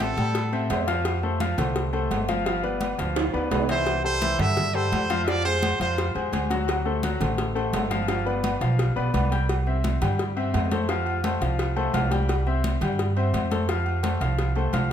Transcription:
Already playing: upright bass A1, grand piano C4 C5 E5
0.00 trumpet A4, cowbell, high conga, low agogo
0.17 upright bass A2, grand piano G3 G4 G5, cowbell, high conga
0.35 cowbell, high conga, low agogo
0.52 grand piano C4 C5 E5, high conga, low agogo
0.70 upright bass F2, grand piano C4 C5 E5, cowbell, high conga, low timbale, low agogo
0.88 grand piano F3 F4 F5, cowbell
1.05 cowbell, high conga, low agogo
1.23 grand piano A3 A4 C5, high conga
1.40 grand piano F3 F4 F5, cowbell, high conga, low agogo
1.58 upright bass C2, grand piano A3 A4 C5, cowbell, high conga, low conga, low agogo
1.76 cowbell, high conga
1.93 grand piano A3 A4 C5, high conga, low agogo
2.11 upright bass G1, cowbell, high conga, low timbale, low agogo
2.29 grand piano F3 F4 F5, cowbell, high conga
2.46 grand piano F3 F4 F5, cowbell, high conga, low agogo
2.63 grand piano B3 B4 D5, high conga, low agogo
2.81 cowbell, high conga, low agogo
2.98 upright bass D2, grand piano F3 F4 F5, cowbell, high conga
3.16 cowbell, high conga, high timbale, low agogo
3.33 upright bass D2, grand piano B3 B4 D5, high conga, high timbale, low agogo
3.51 upright bass C2, grand piano B3 B4 D5, cowbell, high conga, low timbale, low agogo
3.69 grand piano E3 E4 E5, trumpet C5, cowbell, low timbale
3.87 cowbell, high conga, low agogo
4.04 grand piano G3 G4 A4, trumpet C5, high conga
4.22 grand piano E3 E4 E5, cowbell, high conga, low agogo
4.39 upright bass G2, grand piano G3 G4 A4, trumpet E5, cowbell, high conga, low conga, low agogo
4.57 cowbell, high conga, low conga
4.75 grand piano G3 G4 A4, trumpet C5, high conga, low agogo
4.92 upright bass F2, cowbell, high conga, low agogo
5.10 grand piano F3 F4 F5, cowbell, high conga
5.24 grand piano F3 F4 F5, trumpet D5 E5, cowbell, low agogo
5.45 grand piano G#3 G#4 C5, trumpet C5, high conga, low agogo
5.63 cowbell, high conga, low agogo
5.80 upright bass F2, grand piano F3 F4 F5, trumpet C5, cowbell, high conga
5.98 cowbell, high conga, low agogo
6.15 upright bass E2, grand piano G#3 G#4 C5, high conga, low agogo
6.32 upright bass D2, grand piano G#3 G#4 C5, cowbell, high conga, low agogo
6.50 grand piano F#3 F#4 F#5, cowbell, high conga
6.68 cowbell, high conga, low agogo
6.85 grand piano A3 A4 C5, high conga
7.03 grand piano F#3 F#4 F#5, cowbell, high conga, low agogo
7.20 upright bass A1, grand piano A3 A4 C5, cowbell, high conga, low conga, low agogo
7.38 cowbell, high conga
7.55 grand piano A3 A4 C5, high conga, low agogo
7.73 upright bass G1, cowbell, high conga, low timbale, low agogo
7.90 grand piano F3 F4 F5, cowbell, high conga
8.08 grand piano F3 F4 F5, cowbell, high conga, low agogo
8.26 grand piano B3 B4 D5, high conga, low agogo
8.44 cowbell, high conga, low agogo
8.61 upright bass B1, grand piano F3 F4 F5, cowbell, high conga
8.79 cowbell, high conga, low agogo
8.96 upright bass B1, grand piano B3 B4 D5, high conga, low agogo
9.13 upright bass C2, grand piano B3 B4 D5, cowbell, high conga, low agogo
9.32 grand piano G3 G4 G5, cowbell
9.49 cowbell, high conga, low agogo
9.67 grand piano C4 C5 E5, high conga
9.84 cowbell, high conga, low agogo
10.02 upright bass G2, grand piano G3 G4 G5, cowbell, high conga, low conga, low agogo
10.19 cowbell, high conga
10.36 grand piano C4 C5 E5, high conga, low agogo
10.54 upright bass F2, cowbell, high conga, low timbale, low agogo
10.71 grand piano A3 A4 C5, cowbell, high conga
10.89 grand piano F3 F4 F5, cowbell, high conga, low agogo
11.06 high conga, low agogo
11.24 grand piano A3 A4 C5, cowbell, high conga, low agogo
11.41 upright bass C2, grand piano F3 F4 F5, cowbell, high conga
11.59 cowbell, high conga, low agogo
11.76 grand piano A3 A4 C5, high conga, low agogo
11.94 upright bass C2, grand piano F3 F4 F5, cowbell, high conga, low timbale, low agogo
12.11 grand piano G3 G4 G5, cowbell, high conga
12.29 cowbell, high conga, low agogo
12.47 grand piano C4 C5 E5, high conga
12.64 cowbell, high conga, low agogo
12.81 upright bass G2, grand piano G3 G4 G5, cowbell, high conga, low conga, low agogo
12.99 cowbell, high conga
13.17 grand piano C4 C5 E5, high conga, low agogo
13.34 upright bass F2, cowbell, high conga, low agogo
13.51 grand piano A3 A4 C5, cowbell, high conga
13.69 grand piano F3 F4 F5, cowbell, high conga, low agogo
13.86 high conga, low agogo
14.03 grand piano A3 A4 C5, cowbell, high conga, low agogo
14.21 upright bass C2, grand piano F3 F4 F5, cowbell, high conga
14.38 cowbell, high conga, low agogo
14.55 grand piano A3 A4 C5, high conga, low agogo
14.73 upright bass C2, grand piano F3 F4 F5, cowbell, high conga, low agogo

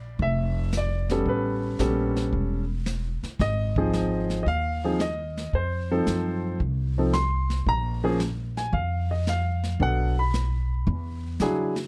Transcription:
Already playing: upright bass A#1, grand piano D5
0.19 upright bass F1, grand piano E5, brush sweep, kick
0.73 snare, hi-hat pedal
0.77 grand piano D5
1.10 grand piano G3 B3 C#4 A4, snare
1.25 upright bass A1, grand piano B4, brush sweep, kick
1.79 upright bass A#1, grand piano G3 B3 C#4 A4, snare, hi-hat pedal
2.16 snare
2.33 upright bass E1, brush sweep, kick
2.86 snare, hi-hat pedal
3.23 muted upright bass stroke, snare
3.39 upright bass G#1, grand piano D#5, brush sweep, kick, snare
3.76 grand piano F3 C4 D#4 G#4, kick
3.93 snare, hi-hat pedal
4.30 snare
4.43 upright bass D#2, grand piano D#5, brush sweep, kick
4.48 grand piano F5
4.84 grand piano F3 C4 D#4 G#4
5.00 grand piano D#5, snare, hi-hat pedal
5.37 snare
5.53 upright bass F2, grand piano C5, brush sweep, kick
5.91 grand piano F3 C4 D#4 A4
6.07 upright bass F#2, snare, hi-hat pedal
6.60 upright bass C2, brush sweep, kick
6.98 grand piano F3 C4 D#4 A4
7.13 grand piano C6, snare, hi-hat pedal
7.50 snare
7.66 upright bass A#1, grand piano A#5, brush sweep, kick
8.04 grand piano F3 A#3 C#4 G#4
8.20 snare, hi-hat pedal
8.57 grand piano G#5, snare
8.73 upright bass F2, grand piano F5, brush sweep, kick
9.11 grand piano D#5
9.27 grand piano F5, snare, hi-hat pedal
9.64 snare
9.80 upright bass B1, grand piano F#3 B3 D4 A4 F#5, brush sweep, kick
10.19 grand piano B5
10.34 snare, hi-hat pedal
10.87 upright bass E2, brush sweep, kick
11.40 upright bass C#3, grand piano F#3 D4 E4 G#4, snare, hi-hat pedal
11.76 snare

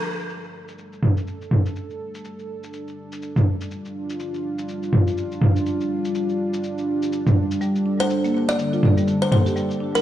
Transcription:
Already playing: analog synth pad G3 D4 A4
0.19 cabasa
0.30 cabasa
0.44 cabasa
0.68 cabasa
0.78 cabasa
0.93 cabasa
1.03 mid tom
1.17 cabasa
1.27 cabasa
1.42 cabasa
1.51 mid tom
1.66 cabasa
1.76 cabasa
1.90 cabasa
2.15 cabasa
2.25 cabasa
2.39 cabasa
2.63 cabasa
2.73 cabasa
2.88 cabasa
3.12 cabasa
3.22 cabasa
3.36 mid tom, cabasa
3.61 cabasa
3.71 analog synth pad F4, cabasa
3.85 cabasa
4.10 cabasa
4.20 cabasa
4.34 cabasa
4.59 cabasa
4.69 cabasa
4.83 cabasa
4.93 mid tom
5.07 cabasa
5.17 cabasa
5.32 cabasa
5.42 mid tom
5.56 cabasa
5.66 cabasa
5.81 cabasa
6.05 cabasa
6.15 cabasa
6.29 cabasa
6.54 cabasa
6.64 cabasa
6.78 cabasa
7.02 cabasa
7.13 cabasa
7.27 mid tom, cabasa
7.51 cabasa
7.61 marimba G3, analog synth pad A4, cabasa
7.76 cabasa
7.86 marimba D4
8.00 marimba G3, kalimba C5, cabasa
8.10 cabasa
8.24 marimba A#3, cabasa
8.34 marimba A#3
8.49 kalimba D5, cabasa
8.59 marimba D3, cabasa
8.73 marimba F4, cabasa
8.83 mid tom
8.97 marimba G3, cabasa
9.08 marimba D3, cabasa
9.22 kalimba C5, cabasa
9.32 marimba A#3, kalimba C5, mid tom
9.46 marimba G4, cabasa
9.56 marimba G3, cabasa
9.71 cabasa
9.80 marimba D4
9.95 marimba G3, kalimba A#4, cabasa

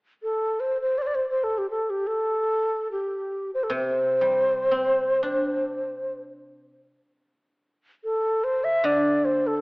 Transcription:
0.23 xiao A4
0.60 xiao C5
0.81 xiao C5
0.98 xiao C5 D5
1.07 xiao D5
1.15 xiao C5
1.29 xiao C5
1.44 xiao A4
1.58 xiao G4
1.70 xiao A4
1.90 xiao G4
2.07 xiao A4
2.92 xiao G4
3.54 xiao C5
3.63 xiao A4
3.70 guzheng C3, xiao C5
4.21 guzheng G3
4.71 guzheng C4
5.23 guzheng D4
8.04 xiao A4
8.44 xiao C5
8.64 xiao E5
8.84 guzheng D3, xiao D5
9.25 xiao C5
9.47 xiao A4
9.57 xiao A4

